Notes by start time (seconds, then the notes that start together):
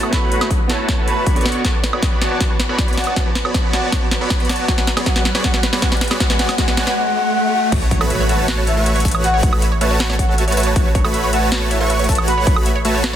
Already playing: E4 F#4 A4 C#5, riser
0.03 A3 F#4 B4 C#5 F#5, high woodblock
0.10 B3 E4 F#4 A4 B5, kick, snare, closed hi-hat
0.14 C#5
0.32 closed hi-hat
0.41 A3 F#4 B4 C#5 B5, snare, high woodblock
0.51 kick, closed hi-hat
0.67 A3 B3 E4 F#4 A4 B4 C#5 A5, snare, closed hi-hat
0.89 kick, snare, closed hi-hat
0.98 A3 F#4 B4 C#5 A5
1.08 B5, closed hi-hat
1.26 B3 F#4 C#5 D5 C#6, kick, closed hi-hat
1.35 B3 D4 F#4 A4 B4, closed hi-hat
1.41 closed hi-hat
1.46 snare, closed hi-hat
1.49 closed hi-hat
1.52 closed hi-hat
1.64 F#4 C#5 D5, kick, snare, closed hi-hat
1.74 B4
1.83 B4, snare, closed hi-hat
1.93 B3 F#4 A4 C#5 D5 B5, high woodblock
2.02 D5, kick, snare, closed hi-hat
2.12 B4
2.21 B3 F#4 C#5 D5 F#5 A5, snare, closed hi-hat
2.31 B4 F#5
2.40 F#4, kick, snare, closed hi-hat
2.50 B4
2.59 B4, snare, closed hi-hat
2.69 B3 F#4 A4 C#5 D5 B5
2.78 D5, kick, snare, closed hi-hat
2.88 B4, closed hi-hat
2.93 closed hi-hat
2.97 B3 F#4 C#5 D5 F#5 A5, snare, closed hi-hat, open hi-hat
3.04 B4 F#5, closed hi-hat, high woodblock
3.16 B3 F#4, kick, snare, closed hi-hat
3.26 B4
3.35 B4, snare, closed hi-hat
3.45 B3 F#4 A4 C#5 D5 B5, high woodblock
3.54 D5, kick, snare, closed hi-hat
3.64 B4
3.73 B3 F#4 C#5 D5 F#5 A5, snare, closed hi-hat
3.83 B4 F#5
3.92 B3 F#4 C#5 D5 A5, kick, snare, closed hi-hat
4.02 B4
4.11 B4, snare, closed hi-hat
4.21 B3 F#4 A4 C#5 D5 B5
4.30 D5, kick, snare, closed hi-hat
4.40 B4, closed hi-hat
4.45 closed hi-hat
4.49 B3 F#4 C#5 D5 F#5 A5, snare, closed hi-hat, open hi-hat
4.56 B4 F#5, closed hi-hat
4.68 F#4 F#5, kick, snare, closed hi-hat
4.78 B4 F#5, snare
4.87 B4, snare, closed hi-hat
4.97 B3 F#4 G#4 C#5 D5 B5, snare, high woodblock
5.06 B3 F#4 C#5 D5 F#5, kick, snare, closed hi-hat
5.16 B4 F#5, snare
5.25 B4, snare, closed hi-hat
5.35 B3 F#4 G#4 C#5 D5 B5, snare
5.44 B3 F#4 C#5 D5 F#5 G#5, kick, snare, closed hi-hat
5.54 B4 F#5, snare
5.63 B4, snare, closed hi-hat
5.73 B3 F#4 G#4 C#5 D5 B5, snare
5.82 B3 F#4 F#5 G#5, kick, snare, closed hi-hat
5.92 B4 F#5, snare, closed hi-hat
5.97 closed hi-hat
6.01 B4, snare, closed hi-hat, open hi-hat
6.08 B3 F#4 G#4 C#5 D5 B5, snare, closed hi-hat, high woodblock
6.20 B3 F#4 C#5 D5 F#5 G#5, kick, snare, closed hi-hat
6.30 B4 F#5, snare
6.39 B3 F#4 C#5 D5 F#5 G#5, snare, closed hi-hat
6.49 B4 F#5, snare, high woodblock
6.58 B3 F#4 C#5 D5 F#5 G#5, kick, snare, closed hi-hat
6.68 B4 F#5, snare
6.77 B3 F#4 C#5 D5 F#5 G#5, snare, closed hi-hat
6.87 B4 F#5, snare
6.96 F#5
7.06 F#5
7.15 F#5
7.25 F#5
7.35 F#5
7.44 F#5
7.53 F#5
7.63 F#5
7.72 A1 A3 F#4 B4 C#5 A5, kick, closed hi-hat, crash, impact
7.82 C#5
7.91 C#5, kick, closed hi-hat
8.01 A3 F#4 A4 B4 C#5 B5, high woodblock
8.10 E5, closed hi-hat
8.20 C#5
8.29 A3 F#4 B4 C#5 E5 F#5 A5, closed hi-hat
8.39 C#5 F#5
8.48 A3 F#4 B4 C#5 A5, snare, closed hi-hat
8.58 C#5
8.67 C#5 E5, closed hi-hat
8.77 A3 F#4 A4 B4 C#5 E5 C#6
8.86 E5, closed hi-hat
8.96 C#5, closed hi-hat
9.00 closed hi-hat
9.05 A3 F#4 B4 C#5 E5 A5, kick, closed hi-hat, open hi-hat
9.11 A3 F#4 B4 C#5 F#5, closed hi-hat, high woodblock
9.24 F#4 F#5, closed hi-hat
9.34 C#5
9.43 C#5, kick, closed hi-hat
9.53 A3 F#4 A4 B4 C#5 B5, high woodblock
9.62 E5, closed hi-hat
9.72 C#5
9.81 A3 F#4 B4 C#5 E5 A5, closed hi-hat
9.91 C#5
10.00 F#4, snare, closed hi-hat
10.10 A3 F#4 B4 C#5 A5, snare
10.19 C#5 F#5, kick, closed hi-hat
10.29 A4 F#5
10.38 E5, closed hi-hat
10.48 C#5, closed hi-hat
10.52 closed hi-hat
10.57 A3 F#4 B4 C#5 E5 A5, closed hi-hat, open hi-hat
10.63 A3 F#4 B4 C#5 A5, closed hi-hat
10.76 A3 F#4 B4 C#5 A5, kick, closed hi-hat
10.86 C#5
10.95 C#5, kick, closed hi-hat
11.04 A3 F#4 A4 B4 C#5 B5, high woodblock
11.14 E5, closed hi-hat
11.24 C#5
11.33 A3 F#4 B4 C#5 E5 F#5 A5, closed hi-hat
11.42 C#5 F#5
11.52 F#4, snare, closed hi-hat
11.62 C#5
11.71 C#5 E5, closed hi-hat
11.80 A3 F#4 A4 B4 C#5 E5 C#6
11.90 E5, closed hi-hat
11.99 C#5, closed hi-hat
12.04 closed hi-hat
12.09 A3 B4 C#5 E5 A5, kick, closed hi-hat, open hi-hat
12.15 A3 F#4 B4 C#5 F#5, closed hi-hat, high woodblock
12.28 F#4 B5, closed hi-hat
12.38 C#5
12.47 C#5, kick, closed hi-hat
12.56 A3 F#4 A4 B4 C#5 B5, high woodblock
12.66 E5, closed hi-hat
12.75 C#5
12.85 A3 F#4 B4 C#5 E5 A5, closed hi-hat
12.95 C#5
13.04 F#4, snare, closed hi-hat